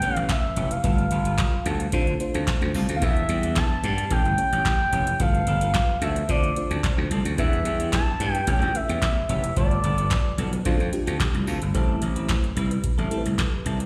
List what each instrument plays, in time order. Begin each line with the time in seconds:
Already playing: analog synth lead G5
0.01 clean electric guitar E3 B3 C#4 G4, fm electric piano A3 B3 G4 B4, closed hi-hat
0.08 fm electric piano C#4
0.16 slap bass A1, analog synth lead F5, muted clean electric guitar stroke, closed hi-hat
0.29 analog synth lead E5, kick, snare, clap, closed hi-hat
0.43 muted clean electric guitar stroke
0.56 slap bass F1, clean electric guitar E3 B3 C#4 G4, closed hi-hat
0.71 analog synth lead F5, muted clean electric guitar stroke, closed hi-hat
0.83 slap bass G1, clean electric guitar G3 B3 F4 A4, fm electric piano A3 F4 G4 B4, kick, closed hi-hat
0.98 closed hi-hat
1.11 slap bass G1, clean electric guitar G3 B3 F4 A4, closed hi-hat
1.25 clean electric guitar G3 B3 F4 A4, closed hi-hat
1.38 muted clean electric guitar stroke, kick, snare, clap, closed hi-hat
1.52 muted clean electric guitar stroke
1.65 slap bass D2, clean electric guitar G3 B3 F4 A4, closed hi-hat
1.80 muted clean electric guitar stroke, closed hi-hat
1.92 slap bass D3, fm electric piano A3 D4 F4 C5, clean electric guitar A3 C4 F4 A4, kick, closed hi-hat
2.07 muted clean electric guitar stroke, closed hi-hat
2.20 fm electric piano A3 D4 F4 C5, muted clean electric guitar stroke, closed hi-hat
2.34 slap bass D2, clean electric guitar A3 C4 F4 A4, closed hi-hat
2.47 kick, snare, clap, closed hi-hat
2.61 slap bass D2, muted clean electric guitar stroke, closed hi-hat
2.74 slap bass C2, clean electric guitar A3 C4 F4 A4, open hi-hat
2.89 slap bass D2, muted clean electric guitar stroke, closed hi-hat
2.96 analog synth lead F5
3.01 slap bass E2, fm electric piano G3 D4 E4 B4, clean electric guitar G3 B3 D4 G4, analog synth lead E5, kick, closed hi-hat
3.16 closed hi-hat
3.29 slap bass E2, clean electric guitar G3 B3 D4 G4, closed hi-hat
3.43 clean electric guitar G3 B3 D4 G4, closed hi-hat
3.56 analog synth lead A5, muted clean electric guitar stroke, kick, snare, clap, closed hi-hat
3.70 muted clean electric guitar stroke
3.83 slap bass G2, clean electric guitar G3 B3 D4 G4, closed hi-hat
3.98 muted clean electric guitar stroke, closed hi-hat
4.10 slap bass A1, clean electric guitar E3 B3 C#4 G4, fm electric piano A3 C#4 G4 B4, analog synth lead G5, kick, closed hi-hat
4.25 slap bass G1, muted clean electric guitar stroke, closed hi-hat
4.38 fm electric piano A3 C#4 G4 C#5, muted clean electric guitar stroke, closed hi-hat
4.52 slap bass A1, clean electric guitar E3 B3 C#4 G4, closed hi-hat
4.65 kick, snare, clap, closed hi-hat
4.80 muted clean electric guitar stroke
4.92 slap bass F1, clean electric guitar E3 B3 C#4 G4, closed hi-hat
5.07 muted clean electric guitar stroke, closed hi-hat
5.20 slap bass G1, clean electric guitar F3 B3 D4 A4, fm electric piano A3 F4 G4 B4, analog synth lead F5, kick, closed hi-hat
5.35 closed hi-hat
5.47 slap bass G1, clean electric guitar F3 B3 D4 A4, closed hi-hat
5.61 clean electric guitar F3 B3 D4 A4, closed hi-hat
5.74 muted clean electric guitar stroke, kick, snare, clap, closed hi-hat
5.89 muted clean electric guitar stroke
6.01 slap bass D2, clean electric guitar F3 B3 D4 A4, analog synth lead E5, closed hi-hat
6.16 muted clean electric guitar stroke, closed hi-hat
6.28 slap bass D3, clean electric guitar F3 C4 D4 A4, fm electric piano A3 D4 F4 C5, analog synth lead D5, kick, closed hi-hat
6.43 muted clean electric guitar stroke, closed hi-hat
6.56 fm electric piano A3 D4 F4 C5, muted clean electric guitar stroke, closed hi-hat
6.70 slap bass D2, clean electric guitar F3 C4 D4 A4, closed hi-hat
6.83 kick, snare, clap, closed hi-hat
6.98 slap bass D2, muted clean electric guitar stroke
7.10 slap bass C2, clean electric guitar F3 C4 D4 A4, closed hi-hat
7.25 slap bass D2, muted clean electric guitar stroke, closed hi-hat
7.38 slap bass E2, clean electric guitar E3 B3 D4 G4, fm electric piano G3 D4 E4 B4, analog synth lead E5, kick, closed hi-hat
7.53 closed hi-hat
7.65 slap bass E2, clean electric guitar E3 B3 D4 G4, closed hi-hat
7.80 clean electric guitar E3 B3 D4 G4, closed hi-hat
7.92 analog synth lead A5, muted clean electric guitar stroke, kick, snare, clap, closed hi-hat
8.07 muted clean electric guitar stroke
8.20 slap bass G2, clean electric guitar E3 B3 D4 G4, closed hi-hat
8.34 analog synth lead G5, muted clean electric guitar stroke, closed hi-hat
8.47 slap bass A1, clean electric guitar E3 B3 C#4 G4, fm electric piano A3 C#4 G4 B4, analog synth lead G5, kick, closed hi-hat
8.62 slap bass C#2, muted clean electric guitar stroke, closed hi-hat
8.74 fm electric piano A3 C#4 G4 B4, analog synth lead E5, muted clean electric guitar stroke, closed hi-hat
8.88 slap bass E2, clean electric guitar E3 B3 C#4 G4, closed hi-hat
9.02 kick, snare, clap, closed hi-hat
9.16 muted clean electric guitar stroke
9.29 slap bass F1, clean electric guitar E3 B3 C#4 G4, analog synth lead E5, closed hi-hat
9.43 muted clean electric guitar stroke, closed hi-hat
9.56 slap bass G1, clean electric guitar F3 B3 D4 A4, fm electric piano A3 F4 G4 B4, analog synth lead D5, kick, closed hi-hat
9.71 closed hi-hat
9.83 slap bass G1, clean electric guitar F3 B3 D4 A4, closed hi-hat
9.98 clean electric guitar F3 B3 D4 A4, closed hi-hat
10.11 muted clean electric guitar stroke, kick, snare, clap, closed hi-hat
10.25 muted clean electric guitar stroke
10.38 slap bass B1, clean electric guitar F3 B3 D4 A4, closed hi-hat
10.52 muted clean electric guitar stroke, closed hi-hat
10.65 slap bass D2, clean electric guitar A3 C4 F4 A4, fm electric piano A3 D4 F4 C5, kick, closed hi-hat
10.79 slap bass F2, muted clean electric guitar stroke, closed hi-hat
10.92 fm electric piano A3 D4 F4 G4, muted clean electric guitar stroke, closed hi-hat
11.06 slap bass D2, clean electric guitar A3 C4 F4 A4, closed hi-hat
11.20 kick, snare, clap, closed hi-hat
11.34 slap bass C2, muted clean electric guitar stroke, closed hi-hat
11.47 slap bass D2, clean electric guitar A3 C4 F4 A4, open hi-hat
11.61 slap bass G1, muted clean electric guitar stroke, closed hi-hat
11.74 slap bass A1, clean electric guitar G3 C4 E4 A4, fm electric piano A3 E4 G4 C5, kick, closed hi-hat
12.01 slap bass A1, muted clean electric guitar stroke, closed hi-hat
12.16 clean electric guitar G3 C4 E4 B4, closed hi-hat
12.29 kick, snare, clap, closed hi-hat
12.43 muted clean electric guitar stroke, closed hi-hat
12.56 slap bass C2, clean electric guitar G3 C4 E4 B4, closed hi-hat
12.71 muted clean electric guitar stroke, closed hi-hat
12.83 muted clean electric guitar stroke, kick, closed hi-hat
12.98 slap bass A1, clean electric guitar G3 C4 E4 A4, closed hi-hat
13.10 clean electric guitar G3 C4 E4 A4, fm electric piano A3 E4 G4 A4, closed hi-hat
13.18 fm electric piano B4
13.25 slap bass C2, muted clean electric guitar stroke, closed hi-hat
13.38 muted clean electric guitar stroke, kick, snare, clap, closed hi-hat
13.53 muted clean electric guitar stroke
13.65 slap bass C2, clean electric guitar G3 C4 E4 A4, closed hi-hat
13.80 muted clean electric guitar stroke, closed hi-hat